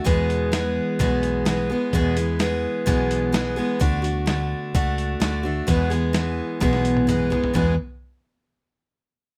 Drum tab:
HH |x-x-x---x-x-x---|x-x-x---x-x-x---|x-x-x---x-x-x---|x-x-x---x-x-x---|
SD |----o-------o---|----o-------o---|----o-------o---|----o---oo------|
T1 |----------------|----------------|----------------|-----------o----|
T2 |----------------|----------------|----------------|------------o---|
FT |----------------|----------------|----------------|--------------oo|
BD |o-------o-------|o-------o-------|o-------o-------|o-------o-------|

HH |----------------|
SD |----------------|
T1 |----------------|
T2 |----------------|
FT |o---------------|
BD |o---------------|